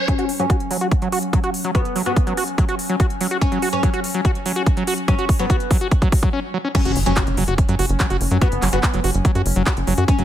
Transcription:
0.08 F#3 C#4, kick, closed hi-hat
0.19 F#4, closed hi-hat
0.29 open hi-hat
0.39 F#3 C#4, closed hi-hat
0.50 F#4, kick, closed hi-hat
0.60 closed hi-hat
0.71 F#3, open hi-hat
0.81 F#4, closed hi-hat
0.92 kick, closed hi-hat
1.02 F#3, closed hi-hat
1.12 F#4, open hi-hat
1.23 closed hi-hat
1.33 F#3, kick, closed hi-hat
1.44 F#4, closed hi-hat
1.54 open hi-hat
1.64 F#3, closed hi-hat
1.75 B3 F#4, kick, closed hi-hat
1.85 closed hi-hat
1.96 F#3, open hi-hat
2.06 B3 F#4, closed hi-hat
2.17 kick, closed hi-hat
2.27 F#3, closed hi-hat
2.37 F#4, open hi-hat
2.48 closed hi-hat
2.58 F#3, kick, closed hi-hat
2.69 F#4, closed hi-hat
2.79 open hi-hat
2.89 F#3, closed hi-hat
3.00 F#4, kick, closed hi-hat
3.10 closed hi-hat
3.21 F#3, open hi-hat
3.31 F#4, closed hi-hat
3.41 C#4, kick, closed hi-hat
3.52 F#3, closed hi-hat
3.62 F#4, open hi-hat
3.73 C#4, closed hi-hat
3.83 F#3, kick, closed hi-hat
3.94 F#4, closed hi-hat
4.04 open hi-hat
4.14 F#3, closed hi-hat
4.25 F#4, kick, closed hi-hat
4.35 closed hi-hat
4.46 F#3, open hi-hat
4.56 F#4, closed hi-hat
4.66 kick, closed hi-hat
4.77 F#3, closed hi-hat
4.87 F#4, open hi-hat
4.98 closed hi-hat
5.08 F#3 C#4, kick, closed hi-hat
5.19 F#4, closed hi-hat
5.29 kick, open hi-hat
5.39 F#3 B3, closed hi-hat
5.50 F#4, kick, closed hi-hat
5.60 closed hi-hat
5.71 F#3, kick, open hi-hat
5.81 F#4, closed hi-hat
5.91 kick, closed hi-hat
6.02 F#3, kick, closed hi-hat
6.12 kick, open hi-hat
6.23 F#3, kick, closed hi-hat
6.33 C#4
6.54 F#3
6.64 C#4
6.75 F#3 C#4, kick, closed hi-hat, crash, impact
6.85 F#1 F#4, closed hi-hat
6.96 F#1, open hi-hat
7.06 F#1 F#3 C#4, closed hi-hat
7.17 F#4, kick, clap, closed hi-hat
7.27 F#1, closed hi-hat
7.37 F#1 F#3, open hi-hat
7.48 F#1 F#4, closed hi-hat
7.58 kick, closed hi-hat
7.69 F#2 F#3, closed hi-hat
7.79 F#1 F#4, open hi-hat
7.89 F#1, closed hi-hat
8.00 F#3, kick, clap, closed hi-hat
8.10 F#1 F#4, closed hi-hat
8.21 F#1, open hi-hat
8.31 F#2 F#3, closed hi-hat
8.41 B3 F#4, kick, closed hi-hat
8.52 F#1, closed hi-hat
8.62 F#1 F#3, clap, open hi-hat
8.73 F#1 B3 F#4, closed hi-hat
8.83 kick, clap, closed hi-hat
8.94 F#1 F#3, closed hi-hat
9.04 F#1 F#4, open hi-hat
9.14 F#1, closed hi-hat
9.25 F#3, kick, closed hi-hat
9.35 F#2 F#4, closed hi-hat
9.46 F#1, open hi-hat
9.56 F#1 F#3, closed hi-hat
9.66 F#4, kick, clap, closed hi-hat
9.77 F#1, closed hi-hat
9.87 F#1 F#3, open hi-hat
9.98 F#2 F#4, closed hi-hat
10.08 C#4, kick, closed hi-hat
10.19 F#1 F#3, closed hi-hat

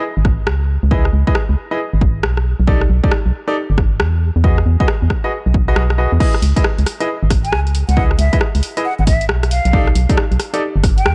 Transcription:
0.17 G#1
0.25 kick, cross-stick
0.47 C#2, cross-stick
0.83 C#2
0.91 E4 G#4 B4 D#5, kick
1.05 cross-stick
1.13 C#2
1.27 E4 G#4 B4 D#5, kick
1.35 cross-stick
1.49 C#2
1.71 E4 G#4 B4 D#5
1.93 G#1
2.01 kick
2.23 B1, cross-stick
2.37 cross-stick
2.60 B1
2.67 D#4 G4 A4 D5, kick
2.81 cross-stick
2.90 B1
3.03 D#4 G4 A4 D5, kick
3.11 cross-stick
3.26 B1
3.48 D#4 G4 A4 D5
3.70 G1
3.78 kick, cross-stick
4.00 E2, cross-stick
4.36 E2
4.44 F#4 G#4 B4 D#5, kick
4.58 cross-stick
4.66 E2
4.80 F#4 G#4 B4 D#5, kick
4.88 cross-stick
5.02 E2
5.10 kick, cross-stick
5.24 F#4 G#4 B4 D#5
5.46 B1
5.54 kick
5.68 F#4 G#4 B4 D#5
5.76 B1, cross-stick
5.90 cross-stick
5.98 F#4 G#4 B4 D#5
6.12 E2
6.20 E4 G#4 B4 D#5, kick, crash
6.34 cross-stick
6.42 C#2, open hi-hat
6.56 E4 G#4 B4 D#5, kick, closed hi-hat
6.64 cross-stick
6.78 C#2, closed hi-hat
6.86 cross-stick, open hi-hat
7.00 E4 G#4 B4 D#5, closed hi-hat
7.23 G#1
7.30 kick, cross-stick, open hi-hat
7.45 G#5, closed hi-hat
7.53 C#2, cross-stick
7.67 closed hi-hat
7.75 open hi-hat
7.89 C#2 F#5, closed hi-hat
7.97 E4 G#4 B4 D#5, kick
8.11 cross-stick
8.19 C#2 E5, open hi-hat
8.33 E4 G#4 B4 D#5, kick, closed hi-hat
8.41 cross-stick
8.55 C#2, open hi-hat
8.63 open hi-hat
8.77 E4 G#4 B4 D#5, closed hi-hat
8.85 F#5
8.99 G#1 F#5
9.07 E5, kick, open hi-hat
9.21 closed hi-hat
9.29 B1, cross-stick
9.43 cross-stick, closed hi-hat
9.51 F5, open hi-hat
9.65 B1, closed hi-hat
9.73 D#4 G4 A4 D5, kick
9.87 cross-stick
9.95 B1, open hi-hat
10.09 D#4 G4 A4 D5, kick, closed hi-hat
10.18 cross-stick
10.32 B1, closed hi-hat
10.40 cross-stick, open hi-hat
10.54 D#4 G4 A4 D5, closed hi-hat
10.76 G1
10.84 kick, cross-stick, open hi-hat
10.98 G5, closed hi-hat
11.06 E2, cross-stick

